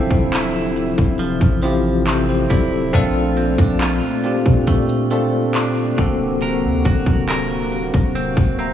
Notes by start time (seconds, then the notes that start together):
Already playing: D1 C3 D3 F3 C4 E4 F4 A4 E5
0.11 kick
0.32 E4, clap, closed hi-hat
0.76 closed hi-hat
0.98 D1, kick
1.19 F3, closed hi-hat
1.41 A1, kick, closed hi-hat
1.63 F3 C4 E4 F4 G4, closed hi-hat
2.06 C4 E4 A4, clap, closed hi-hat
2.29 G4 C5
2.50 D1 E4 A4 D5, kick, closed hi-hat
2.72 A4 E5
2.93 A#1 A#2 A3 C4 D4 F4 A4, kick, closed hi-hat
3.37 C4, closed hi-hat
3.58 A#1 D4, kick
3.80 F4, clap, closed hi-hat
4.24 C4 D4 F4 G4, closed hi-hat
4.46 A#2, kick
4.67 A3, kick, closed hi-hat
4.89 closed hi-hat
5.11 A3 C4 D4 F4 A4, closed hi-hat
5.54 D4, clap, closed hi-hat
5.97 D1 C3 D3 A#3 C4 F#4 A4, kick, closed hi-hat
6.42 D3 A#4, closed hi-hat
6.64 D2
6.85 D1 F#4, kick, closed hi-hat
7.06 kick
7.29 A#4, clap, closed hi-hat
7.72 closed hi-hat
7.94 D1, kick
8.15 C4, closed hi-hat
8.37 D1, kick, closed hi-hat
8.59 C4 E5 A#5, closed hi-hat